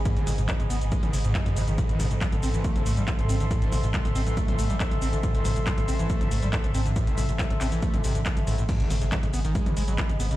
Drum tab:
CC |----------------|----------------|----------------|----------------|
HH |xxoxxxoxxxoxxxox|xxoxxxoxxxoxxxox|xxoxxxoxxxoxxxox|xxoxxxoxxxoxxxox|
SH |xxxxxxxxxxxxxxxx|xxxxxxxxxxxxxxxx|xxxxxxxxxxxxxxxx|xxxxxxxxxxxxxxxx|
CP |----x-------x---|----x-------x---|----x-------x---|----x-------x---|
T2 |--o--o---o---o--|--o--o---o---o--|--o--o---o---o--|--o--o---o---o--|
BD |o---o---o---o---|o---o---o---o---|o---o---o---o---|o---o---o---o---|

CC |----------------|x---------------|
HH |xxoxxxoxxxoxxxox|xxoxxxoxxxoxxxox|
SH |xxxxxxxxxxxxxxxx|xxxxxxxxxxxxxxxx|
CP |----x-x-----x---|----x-------x---|
T2 |--o--o---o---oo-|--o--o---o---o--|
BD |o---o---o---o---|o---o---o---o---|